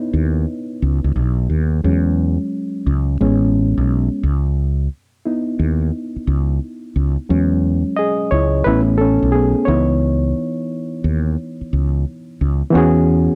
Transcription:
Already playing: reed electric piano B3 D#4 E4 B4 C#5
0.13 fretless electric bass D#2
0.82 fretless electric bass C#2
1.04 fretless electric bass C#2
1.16 fretless electric bass B1
1.50 fretless electric bass D#2
1.84 fretless electric bass E2, reed electric piano F#3 G#3 C#4
2.87 fretless electric bass C#2
3.21 fretless electric bass A1, reed electric piano G#3 B3 C#4
3.78 fretless electric bass B1
4.23 fretless electric bass C#2
5.25 reed electric piano B3 D#4 E4
5.59 fretless electric bass D#2
6.16 muted fretless electric bass stroke
6.27 fretless electric bass C#2
6.96 fretless electric bass C#2
7.29 fretless electric bass E2, reed electric piano F#3 G#3 C#4
7.96 reed electric piano G#4 D#5
8.31 fretless electric bass C#2, reed electric piano E4 C#5
8.64 fretless electric bass A1, reed electric piano A3 B3 C#4 E4 B4
8.98 reed electric piano C#4 A4
9.23 fretless electric bass B1
9.32 reed electric piano B3 G#4
9.65 fretless electric bass C#2, reed electric piano E3 B3 D#4 E4 C#5
11.04 fretless electric bass D#2
11.61 muted fretless electric bass stroke
11.73 fretless electric bass C#2
12.41 fretless electric bass C#2
12.70 reed electric piano E3 B3 C#4
12.75 fretless electric bass E2, reed electric piano F#4 G#4

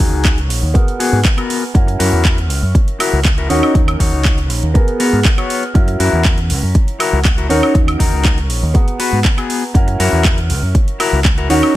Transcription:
Already playing: grand piano C#4 D#4 F#4 A#4
0.00 fingered electric bass D#2, clean electric guitar D#4 F#4 G#4, kick, open hi-hat
0.12 fingered electric bass C#2
0.25 kick, clap, closed hi-hat
0.38 closed hi-hat
0.50 fingered electric bass A#1, open hi-hat
0.62 fingered electric bass D#2
0.74 grand piano B3 F#4 G#4 A#4, muted clean electric guitar stroke, kick, closed hi-hat
0.88 closed hi-hat
1.00 clean electric guitar B3 F#4 G#4, open hi-hat
1.12 fingered electric bass G#2
1.25 kick, clap, closed hi-hat
1.37 clean electric guitar B3 F#4 A#4, closed hi-hat, high woodblock
1.50 open hi-hat
1.74 fingered electric bass F#2, grand piano C#4 E4 F#4 A#4, kick, closed hi-hat
1.87 muted clean electric guitar stroke, closed hi-hat
1.99 fingered electric bass F#2, clean electric guitar E4 F#4 A#4, open hi-hat
2.12 fingered electric bass E2
2.25 kick, clap, closed hi-hat
2.38 closed hi-hat
2.50 fingered electric bass C#2, open hi-hat
2.62 fingered electric bass F#2
2.75 muted clean electric guitar stroke, kick, closed hi-hat
2.88 closed hi-hat
3.00 clean electric guitar E4 F#4 A#4, open hi-hat, high woodblock
3.13 fingered electric bass C#2
3.25 kick, clap, closed hi-hat
3.38 clean electric guitar E4 F#4 A#4, closed hi-hat
3.49 fingered electric bass D#2, grand piano C#4 D#4 F#4 A#4, clean electric guitar D#4 F#4 C#5, open hi-hat
3.63 high woodblock
3.75 fingered electric bass D#2, kick, closed hi-hat
3.88 muted clean electric guitar stroke, closed hi-hat, high woodblock
4.00 fingered electric bass D#2, clean electric guitar D#4 F#4 C#5, kick, open hi-hat
4.13 fingered electric bass C#2
4.25 kick, clap, closed hi-hat
4.38 closed hi-hat
4.50 fingered electric bass A#1, open hi-hat
4.63 fingered electric bass D#2, closed hi-hat
4.74 grand piano B3 F#4 G#4 A#4, muted clean electric guitar stroke, kick, closed hi-hat
4.88 closed hi-hat
5.00 clean electric guitar B3 F#4 A#4, open hi-hat
5.13 fingered electric bass G#2
5.25 kick, clap, closed hi-hat
5.38 clean electric guitar B3 F#4 C#5, closed hi-hat, high woodblock
5.50 open hi-hat
5.63 closed hi-hat
5.74 fingered electric bass F#2, grand piano C#4 E4 F#4 A#4, kick, closed hi-hat
5.88 muted clean electric guitar stroke, closed hi-hat
6.00 fingered electric bass F#2, clean electric guitar E4 F#4 A#4, open hi-hat
6.13 fingered electric bass E2
6.25 kick, clap, closed hi-hat
6.38 closed hi-hat
6.50 fingered electric bass C#2, open hi-hat
6.63 fingered electric bass F#2
6.75 muted clean electric guitar stroke, kick, closed hi-hat
6.88 closed hi-hat
7.00 clean electric guitar E4 F#4 A#4, open hi-hat, high woodblock
7.13 fingered electric bass C#2
7.25 kick, clap, closed hi-hat
7.38 clean electric guitar E4 F#4 A#4, closed hi-hat
7.49 fingered electric bass D#2, grand piano C#4 D#4 F#4 A#4, clean electric guitar D#4 F#4 C#5, open hi-hat
7.63 high woodblock
7.75 fingered electric bass D#2, kick, closed hi-hat
7.87 muted clean electric guitar stroke, closed hi-hat, high woodblock
7.99 fingered electric bass D#2, clean electric guitar D#4 F#4 A#4, kick, open hi-hat
8.12 fingered electric bass C#2
8.25 kick, clap, closed hi-hat
8.38 closed hi-hat
8.50 fingered electric bass A#1, open hi-hat
8.63 fingered electric bass D#2
8.74 grand piano B3 F#4 G#4 A#5, muted clean electric guitar stroke, kick, closed hi-hat
8.88 closed hi-hat
9.00 clean electric guitar B3 F#4 B4, open hi-hat
9.12 fingered electric bass G#2
9.25 kick, clap, closed hi-hat
9.37 clean electric guitar B3 F#4 G#4, closed hi-hat, high woodblock
9.50 open hi-hat
9.74 fingered electric bass F#2, grand piano C#4 E4 F#4 A#4, kick, closed hi-hat
9.87 muted clean electric guitar stroke, closed hi-hat
9.99 fingered electric bass F#2, clean electric guitar E4 F#4 A#4, open hi-hat
10.12 fingered electric bass E2
10.25 kick, clap, closed hi-hat
10.38 closed hi-hat
10.50 fingered electric bass C#2, open hi-hat
10.62 fingered electric bass F#2
10.75 muted clean electric guitar stroke, kick, closed hi-hat
10.88 closed hi-hat
11.00 clean electric guitar E4 F#4 A#4, open hi-hat, high woodblock
11.12 fingered electric bass C#2
11.25 kick, clap, closed hi-hat
11.38 clean electric guitar E4 F#4 A#4, closed hi-hat
11.49 fingered electric bass D#2, grand piano C#4 D#4 F#4 A#4, clean electric guitar D#4 F#4 C#5, open hi-hat
11.63 high woodblock

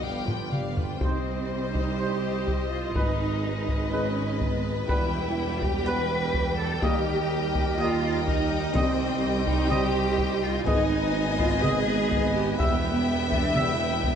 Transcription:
Already playing: french horn section B3
0.02 double bass section G1, tuba G1, cello section G2, french horn section F3, viola section B3 G4, violin section D5 F5 G5
0.28 viola section D4 F4, violin section B4 G5, taiko low-mid
0.52 double bass section G1, tuba G1, cello section G2, viola section B3 G4, violin section D5 F5, taiko mid
0.77 viola section D4 F4, violin section B4 G5, taiko low
1.01 tuba C2, double bass section C2, french horn section G3 D#4, viola section G3, woodwind section G3 G4 C5 D#5, cello section C4, violin section C5 D#5, trumpet C5, taiko
1.74 cello section D#4, taiko
1.98 french horn section G3 D#4, cello section G4, trumpet C5
2.48 taiko
2.72 cello section F4
2.94 tuba G#1, double bass section G#1, woodwind section G#3 D#4 B4, viola section G#3, french horn section G#3 D#4, cello section D#4, trumpet B4, violin section B4, taiko
3.69 taiko
3.92 french horn section G#3 D#4, cello section C#4, trumpet B4
4.41 cello section B3, taiko
4.88 tuba E1, double bass section E2, woodwind section G3 B3 G5, viola section G3, french horn section G3 B3, cello section E4, trumpet B4, violin section G5, taiko
5.62 cello section G4, taiko
5.87 french horn section G3 B3, cello section B4, trumpet B4
6.34 taiko
6.59 cello section A4
6.82 tuba D#2, double bass section D#2, french horn section G3 A#3, woodwind section D#4 A#4, cello section G4, trumpet D#5, violin section D#5, taiko
7.55 taiko
7.79 french horn section G3 A#3, cello section F4, trumpet D#5
8.27 cello section D#4, taiko
8.73 double bass section C2, tuba C2, timpani C3, french horn section G3 C4, viola section G3, cello section C4, trumpet D#5, violin section G5, taiko
8.77 woodwind section C5
9.47 cello section D#4, taiko
9.70 french horn section G3 C4, cello section G4, trumpet D#5, taiko mid
10.19 taiko
10.43 cello section F4
10.65 tuba G#1, double bass section G#1, french horn section G#3 B3, woodwind section G#3 B4 D#5, viola section B3, cello section D#4, violin section D#5 G#5, trumpet D#5, taiko
11.39 cello section F4, taiko
11.61 french horn section G#3 B3, cello section G#4, trumpet D#5, taiko mid
12.12 taiko
12.35 cello section G4
12.58 tuba E1, double bass section E2, french horn section G3 B3, woodwind section G3 G4 E5, cello section B3, trumpet E5, violin section E5 G5, taiko
13.32 cello section D4, taiko
13.55 french horn section G3 B3, cello section E4, trumpet E5, taiko mid
14.04 cello section B3, taiko

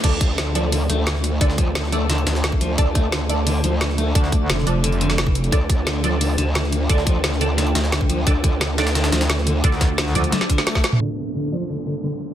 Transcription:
Already playing: ambient pad A3 D4 F4
0.04 wobble bass D2, clean electric guitar D3, synth stab D4 A4 D5, ambient pad D5, kick, closed hi-hat, crash
0.21 kick, closed hi-hat
0.38 clean electric guitar D3, snare, closed hi-hat
0.55 clean electric guitar F3, synth stab D4 A4 D5, closed hi-hat
0.72 clean electric guitar D3, closed hi-hat, open hi-hat
0.90 wobble bass D2, clean electric guitar A3, closed hi-hat
1.07 clean electric guitar D3, snare, closed hi-hat
1.15 snare
1.24 closed hi-hat
1.41 wobble bass D2, clean electric guitar D3, synth stab D4 A4 D5, kick, closed hi-hat
1.50 snare
1.58 clean electric guitar F3, kick, closed hi-hat
1.75 clean electric guitar D3, snare, closed hi-hat
1.84 snare
1.92 clean electric guitar A3, synth stab D4 A4 D5, closed hi-hat
2.10 clean electric guitar D3, snare, closed hi-hat
2.18 closed hi-hat
2.27 wobble bass D2, snare, closed hi-hat
2.35 snare
2.44 clean electric guitar D3, snare, closed hi-hat
2.52 kick
2.61 clean electric guitar F3, closed hi-hat
2.78 wobble bass D2, clean electric guitar D3, synth stab D4 A4 D5, kick, closed hi-hat
2.95 clean electric guitar A3, kick, closed hi-hat
3.12 clean electric guitar D3, snare, closed hi-hat
3.29 synth stab D4 A4 D5, closed hi-hat
3.47 clean electric guitar D3, closed hi-hat, open hi-hat
3.64 wobble bass D2, clean electric guitar F3, closed hi-hat
3.81 clean electric guitar D3, snare, closed hi-hat
3.90 snare
3.98 clean electric guitar A3, closed hi-hat
4.15 wobble bass D2, clean electric guitar D3, synth stab D4 A4 D5, kick, closed hi-hat
4.24 snare
4.32 kick, closed hi-hat
4.49 wobble bass F1, clean electric guitar D3, snare, closed hi-hat
4.58 snare
4.67 wobble bass F1, clean electric guitar F3, synth stab D4 A4 D5, closed hi-hat
4.84 clean electric guitar D3, closed hi-hat
4.92 closed hi-hat
5.01 clean electric guitar D3, closed hi-hat
5.10 snare, closed hi-hat
5.18 clean electric guitar E3, snare, closed hi-hat
5.27 kick
5.35 closed hi-hat
5.44 closed hi-hat
5.52 wobble bass D2, clean electric guitar D3, synth stab D4 A4 D5, ambient pad G5, kick, closed hi-hat
5.69 kick, closed hi-hat
5.87 clean electric guitar D3, snare, closed hi-hat
6.04 clean electric guitar F3, synth stab D4 A4 D5, closed hi-hat
6.21 clean electric guitar D3, closed hi-hat, open hi-hat
6.38 wobble bass D2, clean electric guitar D3, closed hi-hat
6.55 clean electric guitar D3, snare, closed hi-hat
6.64 snare
6.72 closed hi-hat
6.89 wobble bass D2, clean electric guitar D3, synth stab D4 A4 D5, kick, closed hi-hat
6.98 snare
7.07 clean electric guitar F3, kick, closed hi-hat
7.24 clean electric guitar D3, snare, closed hi-hat
7.32 snare
7.41 clean electric guitar D3, synth stab D4 A4 D5, closed hi-hat
7.58 clean electric guitar D3, snare, closed hi-hat
7.67 closed hi-hat
7.75 wobble bass D2, snare, closed hi-hat
7.84 snare
7.92 clean electric guitar D3, snare, closed hi-hat
8.01 kick
8.09 clean electric guitar F3, closed hi-hat
8.27 wobble bass D2, clean electric guitar D3, synth stab D4 A4 D5, kick, closed hi-hat
8.44 clean electric guitar D3, kick, closed hi-hat
8.61 clean electric guitar D3, snare, closed hi-hat
8.78 synth stab D4 A4 D5, snare, closed hi-hat
8.87 snare, closed hi-hat
8.95 clean electric guitar D3, snare, closed hi-hat
9.04 snare, closed hi-hat
9.12 wobble bass D2, clean electric guitar F3, snare, closed hi-hat
9.21 snare, closed hi-hat
9.30 clean electric guitar D3, snare, closed hi-hat
9.38 snare
9.47 clean electric guitar D3, closed hi-hat
9.64 wobble bass D2, clean electric guitar D3, synth stab D4 A4 D5, kick, closed hi-hat
9.72 snare
9.81 kick, snare, closed hi-hat
9.98 clean electric guitar D3, snare, closed hi-hat
10.07 snare
10.15 wobble bass D2, clean electric guitar F3, synth stab D4 A4 D5, closed hi-hat
10.24 closed hi-hat
10.32 clean electric guitar D3, snare, closed hi-hat, high tom
10.41 snare, closed hi-hat
10.49 clean electric guitar D3, kick, closed hi-hat
10.58 snare, closed hi-hat
10.67 clean electric guitar A3, snare, closed hi-hat, open hi-hat
10.75 kick, snare
10.84 snare, closed hi-hat
10.92 mid tom
11.01 clean electric guitar D3, ambient pad A3 D4 F4 D5, synth stab D4 A4 D5, closed hi-hat, downlifter
11.18 closed hi-hat
11.35 clean electric guitar D3, closed hi-hat
11.52 clean electric guitar F3, synth stab D4 A4 D5, closed hi-hat
11.70 clean electric guitar D3, closed hi-hat
11.87 clean electric guitar D3, closed hi-hat
12.04 clean electric guitar D3, closed hi-hat
12.21 closed hi-hat

